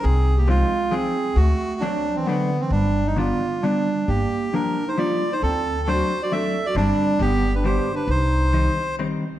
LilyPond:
<<
  \new Staff \with { instrumentName = "Bandoneon" } { \time 3/4 \key g \phrygian \tempo 4 = 134 aes'8. g'16 f'4 aes'4 | fis'4 d'8. c'16 b8. c'16 | d'8. ees'16 f'4 d'4 | g'4 bes'8. c''16 d''8. c''16 |
a'4 c''8. d''16 e''8. d''16 | d'4 g'8. b'16 \tuplet 3/2 { c''4 b'8 } | c''2 r4 | }
  \new Staff \with { instrumentName = "Clarinet" } { \time 3/4 \key g \phrygian c'8. bes16 aes4 c'4 | a4 fis8. e16 d8. e16 | g8. g16 b4 g4 | bes4 d'8. ees'16 f'8. ees'16 |
c'4 fis'8. fis'16 a'8. fis'16 | g4 b8. d'16 \tuplet 3/2 { g'4 d'8 } | ees'2 r4 | }
  \new Staff \with { instrumentName = "Hollow-body jazz guitar" } { \time 3/4 \key g \phrygian r4 <f aes c' ees'>8 r8 <f aes c' ees'>8 r8 | r4 <fis a c' d'>8 r8 <fis a c' d'>8 r8 | r4 <d g b d'>8 r8 <d g b d'>8 r8 | r4 <f g bes d'>8 r8 <f g bes d'>8 r8 |
r4 <fis a c' d'>8 r8 <fis a c' d'>8 r8 | <d g c' d'>4 <d g b d'>8 r8 <d g b d'>8 r8 | r4 <ees g c' ees'>8 r8 <ees g c' ees'>8 r8 | }
  \new Staff \with { instrumentName = "Upright bass" } { \clef bass \time 3/4 \key g \phrygian c,2 r4 | d,8 r2 r8 | g,,2 r4 | g,,8 r2 r8 |
d,2 r4 | g,,8 r8 g,,2 | c,2 r4 | }
>>